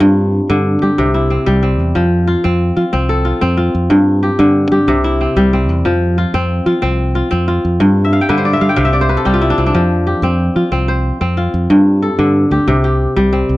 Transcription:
0.00 1.04 G2 medium
0.00 0.39 G2 loud
0.00 1.30 C4 medium
0.00 1.20 F4 medium
0.00 0.51 A4 medium
0.50 0.75 G2 loud
0.50 1.04 D3 medium
0.82 0.89 G3 medium
0.82 2.23 G4 medium
0.98 1.37 C2 medium
0.98 2.01 C3 medium
1.14 2.01 E4 medium
1.30 1.62 C4 medium
1.46 1.79 C2 medium
1.46 2.01 G3 medium
1.63 2.44 C4 medium
1.79 1.92 E2 medium
1.95 2.35 F2 loud
1.95 3.96 F3 medium
2.27 2.76 F4 medium
2.44 2.70 F2 loud
2.44 2.92 C4 medium
2.76 2.83 F3 medium
2.76 3.24 F4 medium
2.93 3.32 C2 medium
2.93 3.41 C4 medium
3.09 4.41 A4 medium
3.25 3.57 F4 medium
3.41 3.68 F2 medium
3.41 5.20 C4 medium
3.57 5.10 F4 medium
3.75 3.87 F2 medium
3.90 4.93 G2 medium
3.90 4.29 G2 loud
4.23 4.71 G4 medium
4.39 4.65 G2 loud
4.39 4.93 D3 medium
4.72 4.78 G3 medium
4.72 6.13 G4 medium
4.87 5.26 C2 medium
4.87 5.90 C3 medium
5.04 5.91 E4 medium
5.21 5.53 C4 medium
5.36 5.69 C2 medium
5.36 5.90 G3 medium
5.53 6.34 C4 medium
5.69 5.82 E2 medium
5.85 6.24 F2 loud
5.85 7.85 F3 medium
6.18 6.66 F4 medium
6.34 6.60 F2 loud
6.34 6.82 C4 medium
6.66 6.73 F3 medium
6.66 7.15 F4 medium
6.82 7.21 C2 loud
6.82 7.30 C4 medium
7.15 7.47 F4 medium
7.31 7.58 F2 loud
7.31 8.35 C4 medium
7.48 8.11 F4 medium
7.65 7.77 F2 medium
7.80 8.82 G2 medium
7.80 8.19 G2 loud
8.04 8.53 E5 medium
8.13 8.59 F5 medium
8.21 8.69 G5 medium
8.29 8.55 G2 loud
8.29 8.82 D3 medium
8.29 8.82 B4 medium
8.38 9.01 C5 medium
8.45 8.93 D5 medium
8.53 8.82 E5 medium
8.61 8.68 G3 loud
8.61 8.76 F5 medium
8.69 9.62 G5 medium
8.76 9.16 C2 medium
8.76 9.80 C3 medium
8.76 9.48 F5 medium
8.85 9.40 E5 medium
8.93 10.04 D5 medium
9.01 10.20 C5 medium
9.09 9.64 B4 medium
9.17 10.49 A4 medium
9.25 9.52 C2 medium
9.25 9.80 G3 medium
9.25 10.06 G4 medium
9.34 10.55 F4 medium
9.42 9.81 E4 medium
9.50 9.66 D4 medium
9.58 9.71 C2 medium
9.58 10.23 C4 medium
9.66 11.34 D4 medium
9.74 10.13 F2 medium
9.74 11.75 F3 medium
10.07 11.48 G4 medium
10.22 10.48 F2 loud
10.22 10.71 C4 medium
10.56 10.63 F3 medium
10.56 11.37 F4 medium
10.72 11.10 C2 medium
10.72 11.20 C4 medium
10.88 12.07 C5 medium
11.21 11.47 F2 medium
11.21 13.01 C4 medium
11.37 12.89 F4 medium
11.54 11.67 F2 medium
11.70 12.08 G2 medium
11.70 12.72 G2 medium
12.02 13.34 A4 medium
12.19 12.44 G2 loud
12.19 12.72 D3 medium
12.51 12.58 D2 medium
12.51 12.84 G4 medium
12.67 13.06 C2 medium
12.67 13.57 C3 medium
12.84 13.57 G4 medium
13.16 13.42 C2 medium
13.16 13.57 G3 medium
13.33 13.57 C4 medium
13.49 13.57 C2 medium

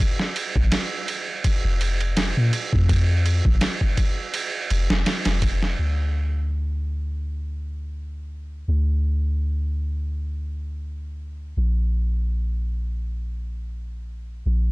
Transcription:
0.00 kick loud
0.00 ride medium
0.20 snare medium
0.36 ride medium
0.56 0.70 A#1 loud
0.56 kick medium
0.72 snare loud
0.72 ride medium
1.08 ride medium
1.44 kick loud
1.44 ride medium
1.64 2.33 F1 medium
1.81 ride medium
2.01 ride soft
2.17 snare loud
2.17 ride medium
2.37 2.51 A#2 loud
2.53 ride medium
2.73 3.41 F2 loud
2.73 kick loud
2.89 kick loud
2.89 ride medium
3.26 ride medium
3.45 3.60 A#1 medium
3.45 kick medium
3.61 snare loud
3.61 ride medium
3.81 kick medium
3.97 kick medium
3.97 ride medium
4.34 ride medium
4.70 4.87 F1 loud
4.70 ride medium
4.90 5.04 F1 loud
4.90 snare loud
5.06 snare loud
5.06 ride medium
5.25 5.75 F1 loud
5.25 snare loud
5.25 ride medium
5.42 kick loud
5.42 ride medium
5.63 snare medium
5.79 8.64 D2 medium
8.68 11.54 D2 medium
11.57 14.43 A#1 medium
14.46 14.72 A#1 medium

